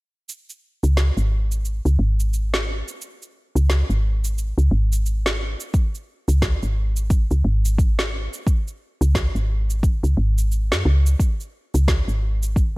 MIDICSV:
0, 0, Header, 1, 3, 480
1, 0, Start_track
1, 0, Tempo, 681818
1, 203, Time_signature, 4, 2, 24, 8
1, 8995, End_track
2, 0, Start_track
2, 0, Title_t, "FM bass"
2, 0, Program_c, 0, 39
2, 586, Note_on_c, 0, 37, 91
2, 782, Note_off_c, 0, 37, 0
2, 824, Note_on_c, 0, 32, 71
2, 1270, Note_off_c, 0, 32, 0
2, 1305, Note_on_c, 0, 37, 86
2, 1388, Note_off_c, 0, 37, 0
2, 1401, Note_on_c, 0, 32, 84
2, 1990, Note_off_c, 0, 32, 0
2, 2503, Note_on_c, 0, 37, 88
2, 2701, Note_off_c, 0, 37, 0
2, 2743, Note_on_c, 0, 32, 72
2, 3190, Note_off_c, 0, 32, 0
2, 3222, Note_on_c, 0, 37, 78
2, 3306, Note_off_c, 0, 37, 0
2, 3318, Note_on_c, 0, 32, 84
2, 3909, Note_off_c, 0, 32, 0
2, 4422, Note_on_c, 0, 37, 88
2, 4620, Note_off_c, 0, 37, 0
2, 4666, Note_on_c, 0, 32, 73
2, 5111, Note_off_c, 0, 32, 0
2, 5145, Note_on_c, 0, 37, 85
2, 5228, Note_off_c, 0, 37, 0
2, 5241, Note_on_c, 0, 32, 93
2, 5830, Note_off_c, 0, 32, 0
2, 6343, Note_on_c, 0, 37, 96
2, 6541, Note_off_c, 0, 37, 0
2, 6583, Note_on_c, 0, 32, 82
2, 7029, Note_off_c, 0, 32, 0
2, 7064, Note_on_c, 0, 37, 89
2, 7147, Note_off_c, 0, 37, 0
2, 7161, Note_on_c, 0, 32, 91
2, 7546, Note_on_c, 0, 42, 78
2, 7556, Note_off_c, 0, 32, 0
2, 7628, Note_off_c, 0, 42, 0
2, 7641, Note_on_c, 0, 37, 93
2, 7852, Note_off_c, 0, 37, 0
2, 8267, Note_on_c, 0, 37, 93
2, 8463, Note_off_c, 0, 37, 0
2, 8503, Note_on_c, 0, 32, 74
2, 8950, Note_off_c, 0, 32, 0
2, 8995, End_track
3, 0, Start_track
3, 0, Title_t, "Drums"
3, 204, Note_on_c, 9, 69, 52
3, 274, Note_off_c, 9, 69, 0
3, 348, Note_on_c, 9, 69, 30
3, 419, Note_off_c, 9, 69, 0
3, 589, Note_on_c, 9, 69, 54
3, 659, Note_off_c, 9, 69, 0
3, 684, Note_on_c, 9, 38, 67
3, 685, Note_on_c, 9, 69, 49
3, 754, Note_off_c, 9, 38, 0
3, 756, Note_off_c, 9, 69, 0
3, 827, Note_on_c, 9, 69, 30
3, 897, Note_off_c, 9, 69, 0
3, 1067, Note_on_c, 9, 69, 57
3, 1137, Note_off_c, 9, 69, 0
3, 1162, Note_on_c, 9, 69, 50
3, 1232, Note_off_c, 9, 69, 0
3, 1307, Note_on_c, 9, 69, 32
3, 1378, Note_off_c, 9, 69, 0
3, 1547, Note_on_c, 9, 69, 53
3, 1618, Note_off_c, 9, 69, 0
3, 1643, Note_on_c, 9, 69, 48
3, 1713, Note_off_c, 9, 69, 0
3, 1786, Note_on_c, 9, 38, 73
3, 1788, Note_on_c, 9, 69, 31
3, 1856, Note_off_c, 9, 38, 0
3, 1858, Note_off_c, 9, 69, 0
3, 2028, Note_on_c, 9, 69, 56
3, 2098, Note_off_c, 9, 69, 0
3, 2122, Note_on_c, 9, 69, 52
3, 2193, Note_off_c, 9, 69, 0
3, 2269, Note_on_c, 9, 69, 29
3, 2339, Note_off_c, 9, 69, 0
3, 2508, Note_on_c, 9, 69, 60
3, 2578, Note_off_c, 9, 69, 0
3, 2602, Note_on_c, 9, 38, 70
3, 2604, Note_on_c, 9, 69, 48
3, 2672, Note_off_c, 9, 38, 0
3, 2674, Note_off_c, 9, 69, 0
3, 2747, Note_on_c, 9, 69, 31
3, 2818, Note_off_c, 9, 69, 0
3, 2987, Note_on_c, 9, 69, 62
3, 3057, Note_off_c, 9, 69, 0
3, 3084, Note_on_c, 9, 69, 51
3, 3155, Note_off_c, 9, 69, 0
3, 3227, Note_on_c, 9, 69, 32
3, 3298, Note_off_c, 9, 69, 0
3, 3466, Note_on_c, 9, 69, 57
3, 3537, Note_off_c, 9, 69, 0
3, 3562, Note_on_c, 9, 69, 50
3, 3632, Note_off_c, 9, 69, 0
3, 3703, Note_on_c, 9, 38, 74
3, 3705, Note_on_c, 9, 69, 32
3, 3773, Note_off_c, 9, 38, 0
3, 3775, Note_off_c, 9, 69, 0
3, 3943, Note_on_c, 9, 69, 60
3, 4014, Note_off_c, 9, 69, 0
3, 4040, Note_on_c, 9, 36, 96
3, 4040, Note_on_c, 9, 69, 50
3, 4110, Note_off_c, 9, 36, 0
3, 4110, Note_off_c, 9, 69, 0
3, 4186, Note_on_c, 9, 69, 31
3, 4257, Note_off_c, 9, 69, 0
3, 4424, Note_on_c, 9, 69, 61
3, 4495, Note_off_c, 9, 69, 0
3, 4520, Note_on_c, 9, 36, 97
3, 4521, Note_on_c, 9, 38, 66
3, 4522, Note_on_c, 9, 69, 54
3, 4590, Note_off_c, 9, 36, 0
3, 4591, Note_off_c, 9, 38, 0
3, 4593, Note_off_c, 9, 69, 0
3, 4666, Note_on_c, 9, 69, 33
3, 4736, Note_off_c, 9, 69, 0
3, 4902, Note_on_c, 9, 69, 66
3, 4973, Note_off_c, 9, 69, 0
3, 5000, Note_on_c, 9, 36, 99
3, 5000, Note_on_c, 9, 69, 53
3, 5070, Note_off_c, 9, 36, 0
3, 5071, Note_off_c, 9, 69, 0
3, 5145, Note_on_c, 9, 69, 35
3, 5216, Note_off_c, 9, 69, 0
3, 5386, Note_on_c, 9, 69, 59
3, 5456, Note_off_c, 9, 69, 0
3, 5480, Note_on_c, 9, 36, 103
3, 5485, Note_on_c, 9, 69, 54
3, 5551, Note_off_c, 9, 36, 0
3, 5555, Note_off_c, 9, 69, 0
3, 5624, Note_on_c, 9, 38, 71
3, 5625, Note_on_c, 9, 69, 34
3, 5694, Note_off_c, 9, 38, 0
3, 5696, Note_off_c, 9, 69, 0
3, 5867, Note_on_c, 9, 69, 61
3, 5937, Note_off_c, 9, 69, 0
3, 5960, Note_on_c, 9, 36, 97
3, 5965, Note_on_c, 9, 69, 55
3, 6031, Note_off_c, 9, 36, 0
3, 6036, Note_off_c, 9, 69, 0
3, 6108, Note_on_c, 9, 69, 31
3, 6178, Note_off_c, 9, 69, 0
3, 6348, Note_on_c, 9, 69, 59
3, 6418, Note_off_c, 9, 69, 0
3, 6441, Note_on_c, 9, 36, 98
3, 6442, Note_on_c, 9, 38, 68
3, 6444, Note_on_c, 9, 69, 54
3, 6511, Note_off_c, 9, 36, 0
3, 6513, Note_off_c, 9, 38, 0
3, 6514, Note_off_c, 9, 69, 0
3, 6587, Note_on_c, 9, 69, 32
3, 6658, Note_off_c, 9, 69, 0
3, 6829, Note_on_c, 9, 69, 63
3, 6900, Note_off_c, 9, 69, 0
3, 6921, Note_on_c, 9, 36, 96
3, 6925, Note_on_c, 9, 69, 51
3, 6992, Note_off_c, 9, 36, 0
3, 6995, Note_off_c, 9, 69, 0
3, 7068, Note_on_c, 9, 69, 33
3, 7139, Note_off_c, 9, 69, 0
3, 7308, Note_on_c, 9, 69, 57
3, 7378, Note_off_c, 9, 69, 0
3, 7404, Note_on_c, 9, 69, 52
3, 7474, Note_off_c, 9, 69, 0
3, 7546, Note_on_c, 9, 38, 74
3, 7548, Note_on_c, 9, 69, 35
3, 7616, Note_off_c, 9, 38, 0
3, 7618, Note_off_c, 9, 69, 0
3, 7788, Note_on_c, 9, 69, 65
3, 7859, Note_off_c, 9, 69, 0
3, 7882, Note_on_c, 9, 36, 95
3, 7885, Note_on_c, 9, 69, 53
3, 7952, Note_off_c, 9, 36, 0
3, 7956, Note_off_c, 9, 69, 0
3, 8028, Note_on_c, 9, 69, 30
3, 8098, Note_off_c, 9, 69, 0
3, 8269, Note_on_c, 9, 69, 60
3, 8340, Note_off_c, 9, 69, 0
3, 8363, Note_on_c, 9, 36, 96
3, 8365, Note_on_c, 9, 38, 76
3, 8367, Note_on_c, 9, 69, 49
3, 8433, Note_off_c, 9, 36, 0
3, 8435, Note_off_c, 9, 38, 0
3, 8437, Note_off_c, 9, 69, 0
3, 8509, Note_on_c, 9, 69, 34
3, 8580, Note_off_c, 9, 69, 0
3, 8749, Note_on_c, 9, 69, 62
3, 8819, Note_off_c, 9, 69, 0
3, 8843, Note_on_c, 9, 36, 99
3, 8848, Note_on_c, 9, 69, 49
3, 8913, Note_off_c, 9, 36, 0
3, 8918, Note_off_c, 9, 69, 0
3, 8995, End_track
0, 0, End_of_file